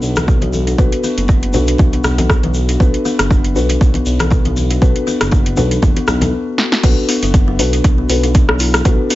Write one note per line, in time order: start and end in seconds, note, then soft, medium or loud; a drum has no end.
0.00 0.38 B1 loud
0.00 0.76 D4 medium
0.00 0.76 F#4 medium
0.00 0.76 A4 medium
0.00 0.76 B4 medium
0.00 shaker medium
0.16 0.23 A4 medium
0.16 cross-stick medium
0.16 closed hi-hat medium
0.16 muted conga soft
0.16 high conga medium
0.16 shaker medium
0.28 kick loud
0.28 low conga medium
0.28 shaker soft
0.41 0.75 B1 loud
0.41 0.52 B4 medium
0.41 closed hi-hat soft
0.41 muted conga soft
0.41 high conga medium
0.53 high conga medium
0.53 shaker medium
0.67 0.77 D4 medium
0.67 closed hi-hat medium
0.67 shaker medium
0.78 0.90 B1 loud
0.78 0.91 B3 medium
0.78 1.51 D4 medium
0.78 1.51 F#4 medium
0.78 1.51 A4 medium
0.78 1.51 B4 loud
0.78 kick loud
0.78 muted conga medium
0.78 shaker soft
0.92 closed hi-hat soft
1.04 1.17 B3 loud
1.04 muted conga soft
1.04 shaker loud
1.18 1.55 F#1 medium
1.18 closed hi-hat medium
1.18 shaker medium
1.28 1.41 D4 medium
1.28 kick loud
1.28 muted conga soft
1.28 shaker soft
1.43 closed hi-hat soft
1.53 1.75 B1 loud
1.53 2.77 D4 medium
1.53 2.77 F#4 medium
1.53 1.67 F#4 medium
1.53 2.77 A4 medium
1.53 2.77 B4 medium
1.53 low conga loud
1.53 shaker medium
1.67 closed hi-hat medium
1.67 muted conga soft
1.67 shaker medium
1.78 2.00 B1 medium
1.78 1.93 F#4 medium
1.78 kick loud
1.78 high conga medium
1.78 low conga medium
1.78 shaker soft
1.93 2.03 B3 medium
1.93 closed hi-hat soft
1.93 muted conga medium
2.04 2.39 B1 loud
2.04 cross-stick medium
2.04 low conga medium
2.04 shaker medium
2.18 2.25 A4 medium
2.18 closed hi-hat medium
2.18 muted conga soft
2.18 high conga loud
2.18 low conga medium
2.18 shaker medium
2.30 kick loud
2.30 cross-stick medium
2.30 shaker soft
2.43 2.77 B1 loud
2.43 2.54 B4 medium
2.43 closed hi-hat soft
2.43 muted conga medium
2.43 high conga medium
2.54 shaker medium
2.69 2.79 D4 medium
2.69 closed hi-hat medium
2.69 shaker medium
2.80 2.91 B1 loud
2.80 2.93 B3 medium
2.80 3.53 D4 medium
2.80 3.53 F#4 medium
2.80 3.53 A4 medium
2.80 3.53 B4 loud
2.80 kick loud
2.80 muted conga soft
2.80 shaker soft
2.94 closed hi-hat soft
3.05 3.19 B3 loud
3.05 muted conga soft
3.05 shaker medium
3.19 3.57 F#1 medium
3.19 cross-stick medium
3.19 closed hi-hat medium
3.19 shaker soft
3.30 3.43 D4 medium
3.30 kick loud
3.30 muted conga soft
3.30 shaker soft
3.44 closed hi-hat soft
3.56 3.77 B1 loud
3.56 4.79 D4 medium
3.56 4.79 F#4 medium
3.56 3.69 F#4 medium
3.56 4.79 A4 medium
3.56 4.79 B4 medium
3.56 shaker medium
3.69 closed hi-hat medium
3.69 muted conga soft
3.69 shaker medium
3.81 4.02 B1 medium
3.81 3.94 F#4 medium
3.81 kick loud
3.81 shaker soft
3.94 4.05 B3 medium
3.94 closed hi-hat soft
3.94 muted conga medium
4.06 4.41 B1 loud
4.06 shaker medium
4.19 4.26 A4 medium
4.19 cross-stick medium
4.19 closed hi-hat medium
4.19 muted conga soft
4.19 high conga medium
4.19 shaker soft
4.30 kick loud
4.30 low conga loud
4.30 shaker soft
4.45 4.78 B1 loud
4.45 4.55 B4 medium
4.45 closed hi-hat soft
4.45 muted conga medium
4.45 high conga medium
4.57 high conga medium
4.57 shaker medium
4.70 4.81 D4 medium
4.70 closed hi-hat medium
4.70 shaker soft
4.82 4.93 B1 loud
4.82 4.94 B3 medium
4.82 5.55 D4 loud
4.82 5.55 F#4 medium
4.82 5.55 A4 medium
4.82 5.55 B4 loud
4.82 kick loud
4.82 muted conga medium
4.82 shaker soft
4.96 closed hi-hat soft
5.07 5.20 B3 loud
5.07 muted conga soft
5.07 shaker medium
5.21 5.59 F#1 medium
5.21 cross-stick medium
5.21 closed hi-hat medium
5.21 shaker medium
5.32 5.45 D4 loud
5.32 kick loud
5.32 muted conga medium
5.32 shaker soft
5.46 closed hi-hat soft
5.57 5.78 B1 loud
5.57 6.81 D4 medium
5.57 6.81 F#4 medium
5.57 5.71 F#4 medium
5.57 6.81 A4 medium
5.57 6.81 B4 medium
5.57 low conga loud
5.57 shaker medium
5.71 closed hi-hat medium
5.71 muted conga soft
5.71 shaker medium
5.82 5.94 F#1 loud
5.82 5.96 F#4 medium
5.82 kick loud
5.82 high conga medium
5.82 low conga medium
5.82 shaker soft
5.96 6.07 B3 medium
5.96 closed hi-hat soft
5.96 muted conga medium
6.08 6.33 B1 loud
6.08 cross-stick medium
6.08 low conga medium
6.08 shaker medium
6.21 6.28 A4 medium
6.21 closed hi-hat medium
6.21 muted conga soft
6.21 high conga medium
6.21 low conga loud
6.21 shaker soft
6.58 snare medium
6.72 snare medium
6.83 6.95 B1 loud
6.83 6.91 B3 medium
6.83 7.56 D4 loud
6.83 7.56 F#4 medium
6.83 7.56 A4 medium
6.83 7.56 B4 loud
6.83 kick loud
6.83 closed hi-hat soft
6.83 crash loud
6.83 shaker soft
7.09 7.16 B3 loud
7.09 open hi-hat loud
7.09 shaker loud
7.23 7.61 F#1 medium
7.23 7.33 B4 medium
7.23 closed hi-hat medium
7.23 shaker medium
7.34 kick loud
7.34 closed hi-hat soft
7.34 shaker soft
7.48 7.54 F#3 loud
7.59 7.80 B1 medium
7.59 8.07 D4 medium
7.59 8.07 F#4 medium
7.59 8.07 A4 medium
7.59 8.07 B4 loud
7.59 open hi-hat loud
7.59 shaker medium
7.73 7.79 B4 medium
7.73 closed hi-hat medium
7.73 shaker medium
7.84 8.05 B1 medium
7.84 kick loud
7.84 closed hi-hat soft
7.84 shaker soft
7.98 8.08 B3 medium
8.09 8.45 B1 loud
8.09 8.82 D4 medium
8.09 8.82 F#4 medium
8.09 8.82 A4 medium
8.09 8.82 B4 medium
8.09 open hi-hat medium
8.09 shaker medium
8.23 8.34 F#3 medium
8.23 closed hi-hat medium
8.23 shaker medium
8.35 8.47 D4 medium
8.35 kick loud
8.35 closed hi-hat soft
8.35 shaker soft
8.49 8.82 B1 loud
8.49 cross-stick medium
8.59 8.67 E4 medium
8.59 open hi-hat medium
8.59 shaker medium
8.74 cross-stick medium
8.74 closed hi-hat medium
8.74 shaker medium
8.85 8.97 B1 loud
8.85 8.93 B3 medium
8.85 9.15 D4 loud
8.85 9.15 F#4 medium
8.85 9.15 A4 medium
8.85 9.15 B4 loud
8.85 kick loud
8.85 closed hi-hat soft
8.85 shaker soft
9.10 9.15 B3 loud
9.10 open hi-hat loud
9.10 shaker loud